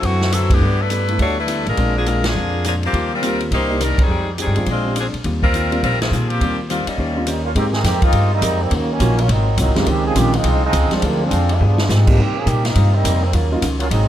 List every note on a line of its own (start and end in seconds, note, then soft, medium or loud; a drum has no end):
0.01 0.58 F#2 medium
0.01 0.21 D3 soft
0.01 0.33 E3 medium
0.01 0.22 C4 soft
0.01 0.33 C4 medium
0.01 0.22 F#4 soft
0.01 0.33 F#4 medium
0.01 0.23 B4 soft
0.01 kick soft
0.01 ride medium
0.05 0.33 A3 medium
0.21 snare soft
0.32 0.51 D3 medium
0.32 0.51 F#3 medium
0.32 0.51 C4 medium
0.32 0.51 E4 medium
0.32 0.51 F#4 medium
0.32 0.51 A4 medium
0.32 0.52 B4 medium
0.32 hi-hat pedal medium
0.32 ride medium
0.50 0.81 E3 medium
0.50 0.60 A3 soft
0.50 0.60 B3 soft
0.50 0.80 B3 medium
0.50 0.60 D4 soft
0.50 0.80 D4 medium
0.50 0.61 G4 medium
0.50 0.81 G4 medium
0.50 kick medium
0.50 ride medium
0.60 1.16 G2 medium
0.60 0.80 G3 soft
0.60 0.80 B3 soft
0.60 0.81 E4 soft
0.60 0.81 A4 soft
0.81 1.20 A3 medium
0.81 1.20 D4 medium
0.81 1.20 E4 medium
0.81 1.20 B4 medium
0.90 1.10 G3 medium
0.90 1.10 B3 soft
0.90 1.10 E4 medium
0.90 1.10 A4 medium
0.90 hi-hat pedal soft
0.90 ride medium
1.08 1.18 A3 soft
1.08 1.18 B3 soft
1.08 1.18 D4 soft
1.08 1.19 E4 medium
1.08 ride soft
1.19 1.63 D2 medium
1.19 1.38 G3 soft
1.19 1.37 A3 medium
1.19 1.39 B3 soft
1.19 1.37 D4 medium
1.19 1.39 E4 soft
1.19 1.37 F#4 medium
1.19 1.39 A4 soft
1.19 1.37 C#5 medium
1.19 kick soft
1.19 ride medium
1.39 1.65 A3 medium
1.39 1.65 D4 medium
1.39 1.65 E4 medium
1.39 1.65 B4 medium
1.47 1.67 G3 medium
1.47 1.67 B3 medium
1.47 1.67 E4 medium
1.47 1.67 A4 medium
1.47 hi-hat pedal soft
1.47 ride medium
1.66 1.76 A1 medium
1.66 1.97 G#3 medium
1.66 1.95 D4 medium
1.66 1.97 F4 medium
1.66 1.96 A#4 medium
1.66 ride soft
1.76 2.32 A#1 medium
1.76 1.96 A#2 soft
1.76 2.20 G#3 soft
1.76 1.97 G#3 soft
1.76 2.21 C4 soft
1.76 2.21 D4 soft
1.76 1.97 D4 soft
1.76 2.21 F4 soft
1.76 1.98 F4 soft
1.76 kick soft
1.76 ride soft
1.96 2.06 F3 medium
1.96 2.07 A#3 medium
1.96 2.06 D4 medium
1.96 2.06 G#4 medium
2.06 2.26 A#2 soft
2.06 2.26 G#3 medium
2.06 2.25 G#3 medium
2.06 2.25 D4 medium
2.06 2.26 D4 soft
2.06 2.25 F4 medium
2.06 2.26 F4 medium
2.06 2.25 A#4 medium
2.06 hi-hat pedal medium
2.06 ride medium
2.24 2.65 F3 medium
2.24 2.65 A#3 medium
2.24 2.65 D4 medium
2.24 2.66 G#4 medium
2.24 snare medium
2.24 ride medium
2.35 2.90 F2 medium
2.35 2.54 A#2 soft
2.35 2.54 G#3 soft
2.35 2.55 D4 soft
2.35 2.55 F4 soft
2.64 2.84 A#2 soft
2.64 2.74 F3 medium
2.64 2.84 G#3 soft
2.64 2.74 A#3 medium
2.64 2.84 D4 soft
2.64 2.74 D4 medium
2.64 2.84 F4 medium
2.64 2.74 G#4 medium
2.64 hi-hat pedal medium
2.64 ride medium
2.83 3.11 F3 medium
2.83 3.11 A#3 medium
2.83 3.11 C4 medium
2.83 3.11 G4 medium
2.83 ride soft
2.93 3.48 D#2 medium
2.93 3.13 D#3 soft
2.93 3.13 G3 soft
2.93 3.13 C4 soft
2.93 3.13 F4 soft
2.93 kick soft
2.93 ride soft
3.14 3.42 G3 medium
3.14 3.42 C4 medium
3.14 3.42 F4 medium
3.14 3.42 A#4 medium
3.21 3.41 D#3 soft
3.21 3.41 G3 medium
3.21 3.51 A#3 soft
3.21 3.51 C4 soft
3.21 3.42 C4 medium
3.21 3.51 F4 soft
3.21 3.42 F4 medium
3.21 3.51 G4 medium
3.21 hi-hat pedal soft
3.21 ride medium
3.40 ride soft
3.51 3.95 C2 medium
3.51 3.70 C3 soft
3.51 3.70 D#3 soft
3.51 3.71 A#3 soft
3.51 3.79 A#3 medium
3.51 3.71 D4 soft
3.51 3.79 D#4 medium
3.51 3.79 G4 medium
3.51 3.79 C5 medium
3.51 kick soft
3.51 ride medium
3.68 3.79 A#3 medium
3.68 3.79 D4 soft
3.68 3.79 D#4 medium
3.68 3.79 G4 medium
3.80 3.99 C3 soft
3.80 3.99 D#3 soft
3.80 3.99 G3 medium
3.80 4.00 A#3 soft
3.80 4.00 D4 medium
3.80 3.99 D4 medium
3.80 3.99 D#4 medium
3.80 3.99 A#4 medium
3.80 hi-hat pedal medium
3.80 ride medium
3.98 4.28 D#3 medium
3.98 4.29 G3 medium
3.98 4.29 C4 medium
3.98 4.29 G#4 medium
3.98 muted upright bass stroke soft
3.98 kick medium
3.98 ride medium
4.08 4.44 F2 medium
4.08 4.28 F3 soft
4.08 4.29 G#3 soft
4.08 4.29 D#4 soft
4.08 4.29 G4 soft
4.38 4.67 D#3 medium
4.38 4.57 F3 soft
4.38 4.67 G3 medium
4.38 4.57 G#3 medium
4.38 4.66 C4 medium
4.38 4.58 D#4 soft
4.38 4.58 G4 soft
4.38 4.66 G#4 medium
4.38 hi-hat pedal medium
4.38 ride soft
4.47 4.56 G2 medium
4.55 4.66 F2 medium
4.55 4.65 G#3 soft
4.55 4.66 C4 soft
4.55 4.66 D4 soft
4.55 4.66 F4 medium
4.55 ride soft
4.66 5.10 A#1 medium
4.66 4.86 A#2 soft
4.66 4.86 G#3 soft
4.66 4.86 C4 soft
4.66 4.87 D4 soft
4.66 kick soft
4.66 ride medium
4.71 4.96 G#3 medium
4.71 4.96 C4 medium
4.71 4.96 D4 medium
4.71 4.96 F4 medium
4.85 4.94 G#3 soft
4.85 4.95 C4 soft
4.85 4.95 D4 soft
4.85 4.95 G4 soft
4.96 5.15 A#2 medium
4.96 5.06 F3 medium
4.96 5.15 G#3 medium
4.96 5.15 C4 medium
4.96 5.15 D4 medium
4.96 5.06 D4 medium
4.96 5.07 G#4 medium
4.96 hi-hat pedal soft
4.96 ride medium
5.00 5.07 C4 medium
5.13 muted upright bass stroke soft
5.13 ride soft
5.24 5.79 D#2 medium
5.24 5.44 D#3 soft
5.24 5.44 G3 medium
5.24 5.44 C4 soft
5.24 5.45 F4 medium
5.24 kick soft
5.24 ride soft
5.43 5.80 G3 medium
5.43 5.80 C4 medium
5.43 5.80 F4 medium
5.43 5.80 A#4 medium
5.43 kick soft
5.54 5.73 D#3 medium
5.54 5.73 G3 soft
5.54 5.74 C4 medium
5.54 5.74 F4 medium
5.54 hi-hat pedal soft
5.54 ride medium
5.71 5.81 G3 medium
5.71 5.81 A#3 medium
5.71 5.81 C4 medium
5.71 5.82 F4 medium
5.71 ride soft
5.82 6.09 A#1 medium
5.82 6.02 D#3 soft
5.82 6.00 G3 medium
5.82 6.02 G3 soft
5.82 6.00 C4 medium
5.82 6.03 C4 soft
5.82 6.00 F4 medium
5.82 6.03 F4 soft
5.82 6.00 A#4 loud
5.82 kick soft
5.82 ride medium
6.00 6.27 F3 medium
6.00 6.27 A#3 medium
6.00 6.27 C4 medium
6.00 6.27 G#4 medium
6.00 snare medium
6.00 ride medium
6.11 6.38 A#2 medium
6.11 6.31 D#3 medium
6.11 6.32 G3 soft
6.11 6.31 C4 soft
6.11 6.32 F4 medium
6.11 hi-hat pedal medium
6.29 6.58 F3 medium
6.29 6.58 A#3 medium
6.29 6.58 C4 medium
6.29 6.58 G4 medium
6.29 ride soft
6.41 6.84 D#2 medium
6.41 6.60 D#3 soft
6.41 6.57 G3 soft
6.41 6.60 G3 soft
6.41 6.57 A#3 soft
6.41 6.60 C4 soft
6.41 6.57 C4 soft
6.41 6.57 F4 soft
6.41 6.61 F4 soft
6.41 kick soft
6.41 ride medium
6.69 6.89 D#3 soft
6.69 6.86 G3 medium
6.69 6.89 G3 soft
6.69 6.86 A#3 medium
6.69 6.86 C4 medium
6.69 6.89 C4 medium
6.69 6.86 F4 medium
6.69 6.89 F4 medium
6.69 hi-hat pedal soft
6.69 ride soft
6.87 7.27 G3 medium
6.87 7.27 A#3 medium
6.87 7.27 C#4 medium
6.87 7.27 D#4 medium
6.87 muted upright bass stroke soft
6.87 ride medium
6.98 7.53 D#2 medium
6.98 7.17 D#3 soft
6.98 7.18 C#4 soft
6.98 7.18 G4 soft
6.98 7.18 C5 soft
6.98 kick soft
7.16 7.26 G3 medium
7.16 7.26 C4 soft
7.16 7.27 C#4 soft
7.16 7.26 F4 medium
7.27 7.46 D#3 soft
7.27 7.43 G3 medium
7.27 7.43 A#3 medium
7.27 7.46 C#4 medium
7.27 7.43 C#4 medium
7.27 7.44 D#4 medium
7.27 7.46 G4 medium
7.27 7.47 C5 medium
7.27 hi-hat pedal medium
7.27 ride medium
7.44 7.49 G3 medium
7.44 7.49 A#3 medium
7.44 7.49 C#4 medium
7.44 7.49 F4 medium
7.55 7.83 G#2 medium
7.55 7.64 D#3 medium
7.55 7.75 G#3 soft
7.55 7.72 G#3 medium
7.55 7.72 A#3 soft
7.55 7.64 A#3 medium
7.55 7.72 C4 soft
7.55 7.64 C4 medium
7.55 7.75 C4 soft
7.55 7.72 D#4 medium
7.55 7.64 G4 medium
7.55 7.72 G4 medium
7.55 7.75 G4 soft
7.55 7.76 A#4 medium
7.55 kick soft
7.55 ride medium
7.72 7.83 D#3 medium
7.72 7.83 A#3 medium
7.72 7.83 C4 medium
7.72 7.83 G#4 medium
7.72 snare soft
7.84 8.12 F2 medium
7.84 8.01 D#3 medium
7.84 8.04 G#3 soft
7.84 8.01 A#3 medium
7.84 8.01 C4 medium
7.84 8.04 C4 medium
7.84 8.01 G4 loud
7.84 8.05 G4 medium
7.84 8.05 A#4 medium
7.84 kick soft
7.84 snare soft
7.84 hi-hat pedal soft
7.84 ride medium
8.02 8.29 A#3 medium
8.02 8.30 C4 medium
8.02 8.30 D#4 loud
8.02 8.29 F4 loud
8.02 kick medium
8.02 ride soft
8.12 8.41 G2 medium
8.12 8.33 G#3 soft
8.12 8.33 C4 soft
8.12 8.33 G4 soft
8.12 8.34 A#4 medium
8.12 kick soft
8.12 ride medium
8.33 8.61 G3 medium
8.33 8.61 A#3 medium
8.33 8.61 C4 medium
8.33 8.61 D#4 loud
8.41 8.70 F2 medium
8.41 8.61 G#3 medium
8.41 8.61 C4 medium
8.41 8.62 G4 medium
8.41 8.62 A#4 medium
8.41 kick soft
8.41 hi-hat pedal medium
8.41 ride medium
8.62 8.72 D#3 medium
8.62 8.72 G3 medium
8.62 8.72 A#3 medium
8.62 8.72 C4 medium
8.71 8.99 D#2 medium
8.71 8.91 C#3 medium
8.71 8.90 D#3 soft
8.71 8.90 D#3 medium
8.71 8.90 F#3 medium
8.71 8.90 A#3 soft
8.71 8.90 A#3 medium
8.71 8.91 C#4 soft
8.71 8.91 F#4 medium
8.71 kick soft
8.71 ride medium
8.91 9.19 D#3 medium
8.91 9.18 F#3 medium
8.91 9.18 A#3 medium
8.91 9.19 C#4 loud
9.00 9.28 A#1 medium
9.00 9.19 D#3 medium
9.00 9.16 F#3 medium
9.00 9.19 A#3 medium
9.00 9.16 A#3 medium
9.00 9.19 C#4 medium
9.00 9.17 C#4 soft
9.00 9.17 D#4 soft
9.00 9.17 F4 medium
9.00 9.20 F#4 medium
9.00 kick soft
9.00 hi-hat pedal soft
9.00 ride medium
9.19 9.30 F#3 medium
9.19 9.30 A#3 medium
9.19 9.30 C#4 medium
9.19 9.30 F4 medium
9.19 ride soft
9.28 9.57 G#1 medium
9.28 9.48 G#2 soft
9.28 9.48 F#3 soft
9.28 9.57 F#3 medium
9.28 9.57 A#3 medium
9.28 9.48 C4 soft
9.28 9.57 C4 medium
9.28 9.57 D#4 medium
9.28 9.49 F4 soft
9.28 kick soft
9.28 ride medium
9.57 9.67 C2 medium
9.57 9.77 G#2 medium
9.57 9.77 F#3 medium
9.57 9.75 F#3 medium
9.57 9.76 A#3 medium
9.57 9.77 C4 medium
9.57 9.76 C4 medium
9.57 9.76 D#4 medium
9.57 9.78 F4 medium
9.57 kick soft
9.57 hi-hat pedal medium
9.57 ride medium
9.66 9.75 G#1 medium
9.75 9.85 F#1 medium
9.75 10.13 D#3 medium
9.75 10.13 G#3 medium
9.75 9.88 A#3 medium
9.75 10.14 C4 medium
9.75 9.86 C4 medium
9.75 10.14 C#4 medium
9.75 9.88 D#4 medium
9.75 9.88 F4 medium
9.75 10.14 G4 medium
9.75 snare soft
9.75 ride soft
9.86 10.15 C#2 medium
9.86 10.06 C#3 soft
9.86 10.05 D#3 medium
9.86 10.06 F3 soft
9.86 10.05 G#3 medium
9.86 10.05 C4 medium
9.86 10.07 C4 soft
9.86 10.07 D#4 medium
9.86 10.05 G4 medium
9.86 kick soft
9.86 ride medium
10.06 10.16 F3 medium
10.06 10.16 C4 medium
10.06 10.16 D#4 medium
10.06 10.16 G#4 loud
10.15 10.43 A#1 medium
10.15 10.35 C#3 medium
10.15 10.31 D#3 medium
10.15 10.35 D#3 medium
10.15 10.35 F3 medium
10.15 10.32 G#3 medium
10.15 10.34 G#3 medium
10.15 10.32 C4 medium
10.15 10.35 C4 medium
10.15 10.34 C4 medium
10.15 10.32 C#4 soft
10.15 10.35 D#4 medium
10.15 10.32 F4 medium
10.15 10.35 G4 medium
10.15 kick soft
10.15 hi-hat pedal medium
10.15 ride medium
10.34 10.63 G#3 medium
10.34 10.63 C4 loud
10.34 10.63 D#4 medium
10.34 10.64 F4 loud
10.34 ride soft
10.44 10.72 C2 medium
10.44 10.63 C#3 soft
10.44 10.64 F3 soft
10.44 10.64 C4 medium
10.44 10.64 D#4 soft
10.44 kick soft
10.44 ride medium
10.64 10.90 F3 medium
10.64 10.91 G#3 medium
10.64 10.90 C4 medium
10.64 10.90 D#4 loud
10.73 10.90 C#2 medium
10.73 10.92 C#3 medium
10.73 10.92 F3 medium
10.73 10.93 C4 medium
10.73 10.93 D#4 medium
10.73 kick soft
10.73 hi-hat pedal medium
10.73 ride medium
10.91 11.29 F3 medium
10.91 11.29 G#3 medium
10.91 11.29 C4 medium
10.91 11.30 D4 medium
10.91 11.30 F4 medium
10.91 muted upright bass stroke soft
10.91 snare soft
10.91 ride soft
10.95 11.04 D#3 medium
10.95 11.04 F3 medium
10.95 11.03 G#3 medium
10.95 11.04 C4 medium
11.02 11.30 D2 medium
11.02 11.22 C3 medium
11.02 11.21 D3 soft
11.02 11.22 D#3 medium
11.02 11.22 G3 medium
11.02 11.22 G#3 soft
11.02 11.22 A#3 medium
11.02 11.22 C4 medium
11.02 11.23 F4 medium
11.02 kick soft
11.02 ride medium
11.23 11.51 F3 medium
11.23 11.51 G#3 medium
11.23 11.51 C4 medium
11.23 11.51 D4 loud
11.30 11.59 F2 medium
11.30 11.50 D3 medium
11.30 11.50 G#3 medium
11.30 11.50 C4 medium
11.30 11.51 F4 medium
11.30 kick soft
11.30 hi-hat pedal soft
11.30 ride medium
11.49 11.62 G#3 medium
11.49 11.62 C4 medium
11.49 11.62 D4 medium
11.49 ride soft
11.53 11.62 F4 medium
11.60 11.88 G2 medium
11.60 11.90 F3 medium
11.60 11.79 G3 soft
11.60 11.90 G#3 medium
11.60 11.80 B3 soft
11.60 11.91 B3 medium
11.60 11.91 D4 medium
11.60 11.80 F4 soft
11.60 11.80 G#4 soft
11.78 snare medium
11.88 12.17 G#2 medium
11.88 12.07 F3 medium
11.88 12.08 G3 medium
11.88 12.07 G#3 medium
11.88 12.08 B3 medium
11.88 12.07 C4 medium
11.88 12.07 D#4 medium
11.88 12.09 F4 medium
11.88 12.09 G#4 medium
11.88 snare medium
11.88 hi-hat pedal medium
12.07 12.17 G3 medium
12.07 12.19 G#3 medium
12.07 12.17 A#3 medium
12.07 12.18 B3 medium
12.07 12.17 C4 medium
12.07 12.18 D4 medium
12.07 12.17 D#4 medium
12.07 12.19 F4 medium
12.07 12.17 G4 medium
12.07 kick medium
12.07 crash medium
12.18 12.46 C3 medium
12.18 12.37 C3 soft
12.18 12.37 D#3 medium
12.18 12.37 G3 soft
12.18 12.38 A#3 soft
12.18 12.37 A#3 medium
12.18 12.38 C4 medium
12.18 12.38 D#4 medium
12.18 12.37 G4 medium
12.18 kick soft
12.37 12.48 F3 medium
12.37 12.47 A#3 medium
12.37 12.47 C#4 medium
12.37 12.48 G#4 loud
12.46 12.75 A#2 medium
12.46 12.65 C3 medium
12.46 12.65 D#3 medium
12.46 12.66 G3 medium
12.46 12.66 A#3 medium
12.46 12.64 A#3 medium
12.46 12.64 C4 medium
12.46 12.66 D#4 medium
12.46 12.66 G4 medium
12.46 kick soft
12.46 hi-hat pedal medium
12.46 ride medium
12.65 12.93 A#3 medium
12.65 12.92 C4 medium
12.65 12.92 D#4 medium
12.65 12.94 F4 medium
12.65 snare soft
12.65 ride medium
12.75 13.04 G2 medium
12.75 12.95 C3 soft
12.75 12.95 G3 soft
12.75 12.96 A#3 soft
12.75 12.96 D#4 soft
12.75 kick soft
12.75 ride medium
12.94 13.22 G3 medium
12.94 13.22 A#3 medium
12.94 13.22 C4 medium
12.94 13.23 D#4 medium
13.04 13.32 F2 medium
13.04 13.24 C3 medium
13.04 13.24 G3 medium
13.04 13.24 A#3 medium
13.04 13.24 D#4 medium
13.04 kick soft
13.04 hi-hat pedal medium
13.04 ride medium
13.23 13.34 D#3 medium
13.23 13.34 G3 medium
13.23 13.32 A#3 medium
13.23 13.34 C4 medium
13.33 13.61 D#2 medium
13.33 13.51 C#3 medium
13.33 13.53 D#3 soft
13.33 13.51 F3 medium
13.33 13.51 F#3 medium
13.33 13.53 F#3 medium
13.33 13.51 A#3 medium
13.33 13.53 C#4 medium
13.33 13.53 F4 soft
13.33 kick soft
13.33 ride medium
13.51 13.61 F#3 medium
13.51 13.61 A#3 medium
13.51 13.61 C#4 medium
13.51 13.62 D#4 medium
13.51 13.62 F4 medium
13.62 13.90 C#2 medium
13.62 13.82 D#3 medium
13.62 13.82 F#3 medium
13.62 13.82 C#4 medium
13.62 13.82 F4 medium
13.62 kick soft
13.62 hi-hat pedal medium
13.62 ride medium
13.80 13.85 F#3 medium
13.80 13.85 A#3 medium
13.80 13.85 C#4 medium
13.80 13.85 F4 medium
13.80 ride soft
13.90 14.08 G#1 medium
13.90 14.08 G#2 soft
13.90 14.08 F#3 medium
13.90 14.08 G#3 medium
13.90 14.08 C4 medium
13.90 14.08 D#4 loud
13.90 14.08 D#4 medium
13.90 kick soft
13.90 ride medium